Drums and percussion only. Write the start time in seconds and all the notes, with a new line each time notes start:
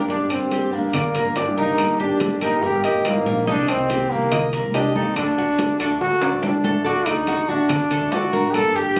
0.09 high bongo, high conga
0.30 high bongo, high conga, high timbale, claves
0.51 high bongo, high conga, high timbale, low timbale
0.73 high bongo
0.93 high bongo, high conga, low conga, high timbale, claves
1.15 high bongo, high conga, low conga, high timbale
1.36 high bongo, low bongo, high conga, high timbale, low timbale
1.78 high bongo, high conga, high timbale, claves
1.99 high bongo, high conga
2.20 high bongo, high conga, high timbale, low timbale
2.41 high conga, high timbale, claves
2.63 high bongo, high conga
2.84 high bongo, high conga, high timbale
3.05 high bongo, low bongo, high conga, high timbale, low timbale, claves
3.26 high conga
3.48 high bongo, high conga
3.68 high bongo, high conga, high timbale, claves
3.90 high bongo, high conga, high timbale, low timbale
4.11 high bongo
4.32 high bongo, high conga, low conga, high timbale, claves
4.53 high bongo, high conga, high timbale
4.74 high bongo, low bongo, high conga, high timbale, low timbale
4.96 high conga
5.16 high bongo, high conga, high timbale, claves
5.38 high bongo, high conga
5.59 high bongo, high conga, high timbale, low timbale
5.80 high bongo, high conga, high timbale, claves
6.01 high bongo, high conga
6.21 high bongo, high conga, high timbale
6.43 high bongo, low bongo, high conga, low timbale, claves
6.64 high conga, low timbale
6.85 high bongo, high conga
7.06 high bongo, high conga, high timbale, claves
7.27 high bongo, high conga, high timbale, low timbale
7.49 high bongo
7.69 high bongo, high conga, low conga, high timbale, claves
7.91 high bongo, high conga, low conga, high timbale
8.12 high bongo, low bongo, high conga, high timbale, low timbale
8.33 high conga
8.54 high bongo, high conga, high timbale, claves
8.76 high conga
8.96 high bongo, high conga, high timbale, low timbale